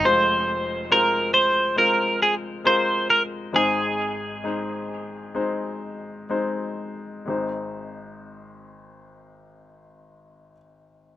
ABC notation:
X:1
M:4/4
L:1/8
Q:1/4=64
K:Ab
V:1 name="Clean electric guitar"
c2 B c B A c B | A6 z2 | z8 |]
V:2 name="Grand piano"
[A,CFc]2 [A,CFc]2 [A,CFc]2 [A,CFB]2 | [A,CEc]2 [A,CEc]2 [A,CEc]2 [A,CEc]2 | [A,CEc]8 |]
V:3 name="Grand piano" clef=bass
[F,,,F,,]8 | [A,,,A,,]8 | A,,,8 |]